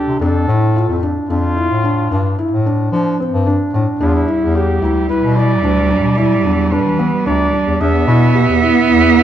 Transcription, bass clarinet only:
0.07 0.19 C3 medium
0.20 0.46 F2 medium
0.47 0.86 A2 medium
0.88 1.14 F2 medium
1.29 1.67 F2 medium
1.70 2.08 A2 medium
2.11 2.36 G2 medium
2.51 2.90 A2 medium
2.92 3.17 F3 medium
3.32 3.58 G2 medium
3.73 3.86 A2 medium
4.00 4.26 E2 medium
4.41 4.79 E2 medium
4.81 5.07 D2 medium
5.22 5.64 B2 medium
5.63 6.05 D2 medium
6.03 6.46 B2 medium
6.44 6.87 E2 medium
6.86 7.11 E3 medium
7.26 7.52 D2 medium
7.66 7.79 E2 medium
7.80 8.06 E2 medium
8.08 8.46 B2 medium
8.48 8.74 E2 medium
8.89 9.23 E2 medium

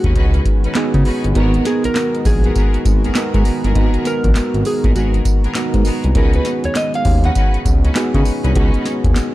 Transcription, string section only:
0.04 0.14 C#4 medium
0.04 0.14 D#4 medium
0.04 0.14 F#4 medium
0.04 0.14 B4 medium
0.15 0.35 C#4 medium
0.15 0.35 D#4 medium
0.15 0.35 F#4 medium
0.15 0.35 B4 loud
0.64 0.76 C#4 medium
0.64 0.76 D#4 medium
0.64 0.76 F#4 medium
0.64 0.76 B4 medium
1.05 1.25 C#4 medium
1.05 1.25 D#4 medium
1.05 1.25 F#4 medium
1.05 1.25 B4 medium
1.35 1.63 B3 medium
1.35 1.64 F#4 medium
1.35 1.64 G#4 medium
1.35 1.64 A#4 loud
2.44 2.54 B3 medium
2.44 2.54 F#4 medium
2.44 2.54 G#4 medium
2.44 2.55 A#4 medium
2.55 2.75 B3 medium
2.55 2.75 F#4 medium
2.55 2.75 G#4 medium
2.55 2.75 A#4 medium
3.04 3.16 B3 medium
3.04 3.16 F#4 medium
3.04 3.16 G#4 medium
3.04 3.16 A#4 medium
3.34 3.46 B3 medium
3.34 3.46 F#4 medium
3.34 3.46 G#4 medium
3.34 3.46 A#4 medium
3.64 3.74 B3 medium
3.64 3.74 F#4 medium
3.64 3.74 G#4 medium
3.64 3.74 A#4 medium
3.75 4.03 B3 loud
3.75 4.03 F#4 medium
3.75 4.04 G#4 medium
3.75 4.04 A#4 loud
4.84 4.94 B3 medium
4.84 4.94 F#4 medium
4.84 4.94 G#4 medium
4.84 4.94 A#4 medium
4.95 5.14 B3 medium
4.95 5.15 F#4 medium
4.95 5.15 G#4 medium
4.95 5.15 A#4 medium
5.44 5.56 B3 medium
5.44 5.56 F#4 medium
5.44 5.56 G#4 medium
5.44 5.56 A#4 medium
5.85 6.05 B3 medium
5.85 6.05 F#4 medium
5.85 6.05 G#4 medium
5.85 6.05 A#4 medium
6.15 6.43 C#4 medium
6.15 6.44 D#4 medium
6.15 6.44 F#4 medium
6.15 6.44 B4 loud
7.24 7.34 C#4 medium
7.24 7.34 D#4 medium
7.24 7.34 F#4 medium
7.24 7.34 B4 medium
7.35 7.54 C#4 medium
7.35 7.55 D#4 medium
7.35 7.55 F#4 medium
7.35 7.55 B4 loud
7.84 7.96 C#4 medium
7.84 7.96 D#4 medium
7.84 7.96 F#4 medium
7.84 7.96 B4 medium
8.14 8.26 C#4 medium
8.14 8.26 D#4 medium
8.14 8.26 F#4 medium
8.14 8.26 B4 medium
8.44 8.54 C#4 medium
8.44 8.54 D#4 medium
8.44 8.54 F#4 medium
8.44 8.55 B4 medium
8.55 8.84 C#4 loud
8.55 8.84 D#4 medium
8.55 8.84 F#4 medium
8.55 8.84 B4 loud

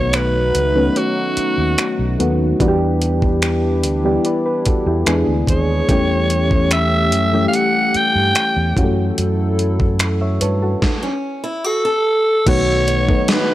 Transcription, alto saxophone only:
0.00 0.17 C#5 loud
0.15 0.99 B4 loud
0.98 2.20 F#4 medium
5.50 6.68 C#5 medium
6.73 7.43 E5 loud
7.48 7.56 F5 medium
7.55 7.98 F#5 loud
7.96 8.78 G5 loud
11.66 12.50 A4 loud
12.48 13.24 C#5 loud
13.24 13.32 C#5 medium
13.30 13.54 B4 loud

